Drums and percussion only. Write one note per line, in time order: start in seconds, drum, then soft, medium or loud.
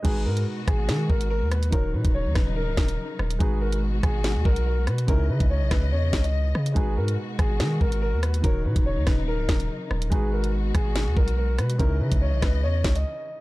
0.05 kick loud
0.05 closed hi-hat medium
0.05 crash loud
0.37 closed hi-hat medium
0.68 kick loud
0.68 cross-stick loud
0.68 closed hi-hat medium
0.89 snare loud
0.89 closed hi-hat medium
1.10 kick loud
1.21 closed hi-hat medium
1.52 cross-stick loud
1.52 closed hi-hat medium
1.63 closed hi-hat medium
1.72 kick loud
1.72 closed hi-hat medium
2.05 kick loud
2.05 closed hi-hat medium
2.35 kick loud
2.35 cross-stick loud
2.35 snare medium
2.35 closed hi-hat medium
2.77 kick loud
2.77 snare loud
2.77 closed hi-hat medium
2.89 closed hi-hat medium
3.19 cross-stick loud
3.30 closed hi-hat medium
3.40 kick loud
3.40 closed hi-hat medium
3.73 closed hi-hat medium
4.03 kick loud
4.03 cross-stick loud
4.03 closed hi-hat medium
4.24 snare loud
4.24 closed hi-hat medium
4.45 kick loud
4.56 closed hi-hat medium
4.87 cross-stick loud
4.87 closed hi-hat medium
4.98 closed hi-hat medium
5.08 kick loud
5.08 closed hi-hat medium
5.40 kick loud
5.40 closed hi-hat medium
5.71 kick loud
5.71 cross-stick loud
5.71 snare medium
5.71 closed hi-hat medium
6.13 kick loud
6.13 snare loud
6.13 closed hi-hat medium
6.24 closed hi-hat medium
6.55 cross-stick loud
6.66 closed hi-hat medium
6.76 kick loud
6.76 closed hi-hat medium
7.08 closed hi-hat medium
7.39 kick loud
7.39 cross-stick loud
7.39 closed hi-hat medium
7.60 snare loud
7.60 closed hi-hat medium
7.81 kick loud
7.92 closed hi-hat medium
8.23 cross-stick loud
8.23 closed hi-hat medium
8.34 closed hi-hat medium
8.44 kick loud
8.44 closed hi-hat medium
8.76 kick loud
8.76 closed hi-hat medium
9.07 kick loud
9.07 cross-stick loud
9.07 snare medium
9.07 closed hi-hat medium
9.49 kick loud
9.49 snare loud
9.49 closed hi-hat medium
9.60 closed hi-hat medium
9.91 cross-stick loud
10.02 closed hi-hat medium
10.12 kick loud
10.12 closed hi-hat medium
10.44 closed hi-hat medium
10.75 kick loud
10.75 cross-stick loud
10.75 closed hi-hat medium
10.96 snare loud
10.96 closed hi-hat medium
11.17 kick loud
11.28 closed hi-hat medium
11.58 cross-stick loud
11.58 closed hi-hat medium
11.70 closed hi-hat medium
11.80 kick loud
11.80 closed hi-hat medium
12.12 kick loud
12.12 closed hi-hat medium
12.42 kick loud
12.42 cross-stick loud
12.42 snare medium
12.42 closed hi-hat medium
12.84 kick loud
12.84 snare loud
12.84 closed hi-hat medium
12.96 closed hi-hat medium